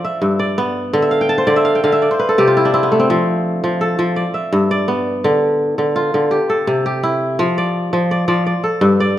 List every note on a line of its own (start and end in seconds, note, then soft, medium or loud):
0.00 0.29 D4 medium
0.00 0.81 A4 medium
0.00 0.39 D5 medium
0.05 1.02 E5 medium
0.22 0.99 G2 medium
0.39 1.46 D5 medium
0.58 1.44 B3 medium
0.93 1.46 D3 medium
1.02 1.56 E5 medium
1.11 1.62 F5 medium
1.21 1.75 G5 medium
1.29 2.16 A5 medium
1.38 2.10 C5 medium
1.47 1.83 D3 medium
1.47 2.01 D5 medium
1.56 1.90 E5 medium
1.65 1.83 F5 medium
1.75 2.68 G5 medium
1.84 2.07 D3 medium
1.84 2.63 F5 medium
1.92 2.54 E5 medium
2.02 3.13 D5 medium
2.11 2.89 C5 medium
2.19 2.44 B4 medium
2.29 3.61 A4 medium
2.38 3.15 C3 medium
2.38 3.80 G4 medium
2.48 2.80 F4 medium
2.57 2.73 E4 medium
2.65 4.33 D4 medium
2.74 2.99 C4 medium
2.74 3.16 E4 medium
2.83 3.06 B3 medium
2.92 4.91 A3 medium
3.00 4.80 C4 medium
3.10 3.62 F3 medium
3.64 3.97 F3 medium
3.81 5.13 A4 medium
3.99 4.22 F3 medium
4.16 4.70 D5 medium
4.34 5.37 E5 medium
4.53 5.30 G2 medium
4.71 5.82 D5 medium
4.88 6.73 B3 medium
5.24 5.77 D3 medium
5.78 6.13 D3 medium
5.96 7.09 F4 medium
6.14 6.37 D3 medium
6.31 6.85 G4 medium
6.50 7.81 A4 medium
6.67 7.45 C3 medium
6.86 8.27 G4 medium
7.03 7.45 E4 medium
7.39 7.92 F3 medium
7.58 8.11 D5 medium
7.93 8.27 F3 medium
8.11 8.28 D5 medium
8.28 8.52 F3 medium
8.28 8.46 D5 medium
8.46 9.00 D5 medium
8.64 9.19 A4 medium
8.81 9.19 G2 medium
9.00 9.19 D5 medium